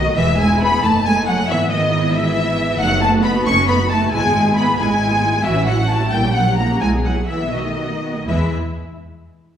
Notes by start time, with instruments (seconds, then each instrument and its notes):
Already playing: double bass section B1, cello section D#3, viola section A3 F#4, violin section D#5
0.16 double bass section E1, cello section E3, viola section G#3 E4, violin section E5
0.38 cello section G#3, violin section G#5
0.60 cello section B3, violin section B5
0.82 double bass section F#1, viola section A3 D#4, cello section A3, violin section A5
1.05 cello section G#3, violin section G#5
1.26 cello section F#3, violin section F#5
1.48 double bass section G#1, cello section E3, viola section B3 E4, violin section E5
1.70 cello section D#3, violin section D#5
2.14 cello section E3, violin section E5
2.79 double bass section F#1, cello section F#3, viola section A3 D#4, violin section F#5
2.91 viola section B3 F#4
3.02 viola section A3 D#4, cello section A3, violin section A5
3.13 viola section B3 F#4
3.23 viola section A3 D#4, cello section B3, violin section B5
3.35 viola section B3 F#4
3.46 double bass section F#1, viola section A3 D#4, cello section C#4, violin section C#6
3.56 viola section B3 F#4
3.67 viola section A3 D#4, cello section B3, violin section B5
3.78 viola section B3 F#4
3.89 viola section A3 D#4, cello section A3, violin section A5
4.00 viola section B3 F#4
4.11 double bass section G#1, viola section G#3 E4, cello section G#3, violin section G#5
4.22 viola section B3 G#4
4.33 viola section G#3 E4
4.45 viola section B3 G#4
4.56 viola section G#3 E4, cello section B3, violin section B5
4.67 viola section B3 G#4
4.78 double bass section G#1, cello section G#3, viola section G#3 E4, violin section G#5
4.89 viola section B3 G#4
5.00 viola section G#3 E4
5.11 viola section B3 G#4
5.22 viola section G#3 E4
5.33 viola section B3 G#4
5.44 double bass section A1, cello section E3, viola section E4 F#4, violin section E5
5.55 viola section C#4 E4
5.67 cello section F#3, viola section E4 F#4, violin section F#5
5.78 viola section C#4 E4
5.89 cello section A3, viola section E4 F#4, violin section A5
6.01 viola section C#4 E4
6.11 double bass section A#1, cello section G3, viola section A#3 E4, violin section G5
6.24 viola section C#4 G4
6.34 cello section F#3, viola section A#3 E4, violin section F#5
6.46 viola section C#4 G4
6.57 cello section A#3, viola section A#3 E4, violin section A#5
6.69 viola section C#4 G4
6.80 double bass section B1, cello section G#3, viola section G#3 E4, violin section G#5
6.92 viola section B3 G#4
7.04 cello section F#3, viola section G#3 E4, violin section F#5
7.16 viola section B3 G#4
7.28 cello section E3, viola section G#3 E4, violin section E5
7.40 viola section B3 G#4
7.52 double bass section B1, cello section D#3, viola section B3 F#4, violin section D#5
7.65 viola section A3 D#4
7.77 viola section B3 F#4
7.90 viola section A3 D#4
8.02 viola section B3 F#4
8.15 viola section A3 D#4
8.26 double bass section E2, cello section E3, viola section G#3 E4, violin section E4 E5